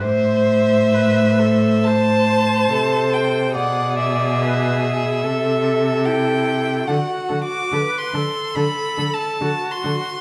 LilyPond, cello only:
\new Staff \with { instrumentName = "Cello" } { \clef bass \time 4/4 \key a \dorian \tempo 4 = 71 a,2. c4 | b,2 c2 | d8 d8 d8 d8 d8 d8 d8 d8 | }